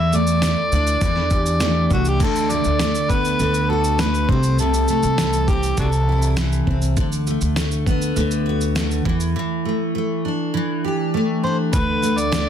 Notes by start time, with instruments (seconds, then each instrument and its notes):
Already playing: upright bass E2, steel-string acoustic guitar E3 A3, harmonica E5
0.13 steel-string acoustic guitar A3, harmonica D5, shaker
0.27 shaker
0.42 steel-string acoustic guitar A3, snare, shaker
0.72 upright bass D2, steel-string acoustic guitar D4, shaker
0.87 shaker
1.01 upright bass E2, steel-string acoustic guitar E3, kick, shaker
1.16 snare
1.30 steel-string acoustic guitar G4, kick, shaker
1.46 shaker
1.60 steel-string acoustic guitar A3, snare, shaker
1.90 upright bass C2, steel-string acoustic guitar A3, harmonica F#4, kick, shaker
2.05 harmonica G4, shaker
2.20 upright bass D2, steel-string acoustic guitar D3, harmonica A4, kick, crash, shaker
2.35 shaker
2.50 steel-string acoustic guitar A3, harmonica D5, shaker
2.64 upright bass D2, shaker
2.79 steel-string acoustic guitar A3, snare, shaker
2.95 shaker
3.10 steel-string acoustic guitar B3, harmonica B4, kick, shaker
3.25 shaker
3.39 upright bass D2, steel-string acoustic guitar D3, shaker
3.54 shaker
3.70 steel-string acoustic guitar F#4, harmonica A4
3.84 shaker
3.99 steel-string acoustic guitar A3, harmonica B4, snare, shaker
4.14 shaker
4.29 upright bass C2, steel-string acoustic guitar C3, harmonica C5, kick
4.43 shaker
4.58 steel-string acoustic guitar C3, harmonica A4, shaker
4.74 shaker
4.88 steel-string acoustic guitar A3, harmonica A4, shaker
5.03 upright bass C2, shaker
5.18 steel-string acoustic guitar E3, snare, shaker
5.33 shaker
5.48 steel-string acoustic guitar C4, harmonica G4, kick, shaker
5.63 shaker
5.77 upright bass C2, steel-string acoustic guitar C3, harmonica D4 F#4 A4, kick, shaker
5.92 shaker
6.09 steel-string acoustic guitar E4
6.22 shaker
6.37 steel-string acoustic guitar E3, snare, shaker
6.52 shaker
6.67 upright bass C2, steel-string acoustic guitar C4, kick
6.82 shaker
6.97 upright bass D2, steel-string acoustic guitar D3, kick, shaker
7.12 shaker
7.27 steel-string acoustic guitar A3, shaker
7.41 upright bass D2, shaker
7.56 steel-string acoustic guitar A3, snare, shaker
7.71 shaker
7.86 steel-string acoustic guitar B3, kick, shaker
8.02 shaker
8.16 upright bass D2, steel-string acoustic guitar D3, shaker
8.31 shaker
8.46 steel-string acoustic guitar F#4
8.61 shaker
8.76 steel-string acoustic guitar A3, snare, shaker
8.91 shaker
9.05 upright bass E2, steel-string acoustic guitar E3, kick
9.20 shaker
9.36 steel-string acoustic guitar E3
9.65 steel-string acoustic guitar A3
9.95 steel-string acoustic guitar A3
10.25 steel-string acoustic guitar D4
10.54 steel-string acoustic guitar E3
10.84 steel-string acoustic guitar G4
11.14 steel-string acoustic guitar A3
11.43 steel-string acoustic guitar D4, harmonica C5
11.73 upright bass D2, steel-string acoustic guitar D3, harmonica B4, kick, shaker
12.02 steel-string acoustic guitar A3, shaker
12.18 harmonica D5, shaker
12.32 steel-string acoustic guitar A3, snare, shaker